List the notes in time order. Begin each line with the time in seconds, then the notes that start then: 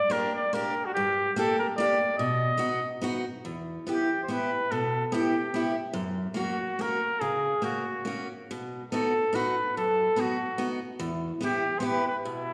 Already playing: D5
0.10 A#3 D4 G4 A#4
0.35 D5
0.53 A#3 D4 G4 A#4
0.85 F#4
0.94 G2 G4
1.36 A#3 D4 G4 A4
1.59 A#4
1.77 A#3 D4 G4 D5
2.18 B2 D#5
2.57 B3 D#4 F#4
3.02 B3 D#4 F#4
3.45 E2
3.87 B3 E4 G4
3.92 G4
4.23 C5
4.28 B3 E4 G4 B4
4.71 B2 A4
5.06 A4
5.12 B3 E4 G4
5.54 B3 E4 G4
5.93 F#2
6.34 A#3 C#4 F#4
6.39 F#4
6.79 A#3 C#4 F#4 A#4
7.21 C#3 G#4
7.62 A#3 C#4 F#4
8.05 A#3 C#4 F#4
8.51 B2
8.92 B3 D#4 F#4 A4
9.33 B3 D#4 F#4 B4
9.77 F#2 A4
10.16 B3 D#4 F#4
10.58 B3 D#4 F#4
10.99 E2
11.41 B3 E4 G4
11.45 G4
11.79 B3 E4 G4 C5
11.84 B4
12.07 B4
12.25 B2 E4